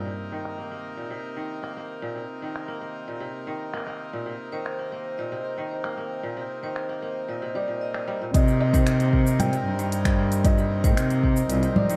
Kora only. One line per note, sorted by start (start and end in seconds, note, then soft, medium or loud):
0.00 0.11 A#2 medium
0.00 0.58 A#3 medium
0.05 0.37 C3 medium
0.32 1.03 D#3 medium
0.58 0.71 A#3 medium
0.71 1.62 A#3 medium
0.97 1.16 A#2 medium
1.10 1.42 C3 medium
1.36 2.08 D#3 medium
1.63 1.76 A#3 medium
1.77 2.68 A#3 medium
2.02 2.21 A#2 medium
2.16 2.47 C3 medium
2.42 3.13 D#3 medium
2.68 2.81 A#3 medium
2.81 3.73 A#3 medium
3.08 3.26 A#2 medium
3.20 3.53 C3 medium
3.47 4.19 D#3 medium
3.74 3.87 A#3 medium
3.87 4.79 A#3 medium
4.13 4.32 A#2 medium
4.26 4.58 C3 medium
4.52 5.24 D#3 medium
4.79 4.92 A#3 medium
4.92 5.84 A#3 medium
5.19 5.37 A#2 medium
5.32 5.63 C3 medium
5.58 6.29 D#3 medium
5.84 5.97 A#3 medium
5.97 6.89 A#3 medium
6.23 6.42 A#2 medium
6.37 6.69 C3 medium
6.63 7.34 D#3 medium
6.89 7.02 A#3 medium
7.02 8.95 A#3 medium
7.28 7.47 A#2 medium
7.42 7.74 C3 medium
7.55 8.06 G3 medium
7.68 8.20 A#2 medium
7.95 9.75 C4 medium
8.08 8.40 G3 medium
8.22 8.33 A#2 medium
8.34 8.53 A#2 medium
8.47 8.79 C3 medium
8.74 9.45 D#3 medium
9.00 9.12 A#3 medium
9.13 10.05 A#3 medium
9.39 9.58 A#2 medium
9.53 9.84 C3 medium
9.79 10.50 D#3 medium
10.06 10.18 A#3 medium
10.18 11.10 A#3 medium
10.44 10.63 A#2 medium
10.58 10.90 C3 medium
10.84 11.55 D#3 medium
11.10 11.23 A#3 medium
11.24 11.96 A#3 medium
11.49 11.69 A#2 medium
11.63 11.95 C3 medium
11.89 11.96 D#3 medium